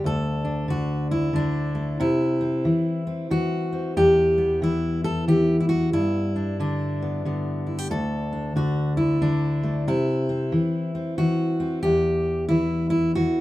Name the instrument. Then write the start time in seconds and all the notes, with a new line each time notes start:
steel-string acoustic guitar
Already playing: D3
0.04 D2 A4
0.45 D4
0.68 D3 F#4
1.11 E4
1.33 D3 D4
1.75 A3
2.00 C3 E4
2.41 C4
2.65 E3
3.07 C4
3.31 E3 F#4
3.72 C4
3.97 E2 G4
4.38 B3
4.62 E3 E4
5.04 A4
5.28 E3 G4
5.60 E4
5.69 F#4
5.93 G2 E4
6.36 D4
6.60 D3 D4
7.02 B3
7.25 D3 B3
7.67 E4
7.78 G4
7.90 D2 A4
8.33 D4
8.56 D3 F#4
8.97 E4
9.21 D3 D4
9.63 A3
9.87 C3 E4
10.29 C4
10.52 E3
10.95 C4
11.18 E3 F#4
11.60 C4
11.83 E2 G4
12.49 E3 E4
12.90 E4
13.15 E3 F#4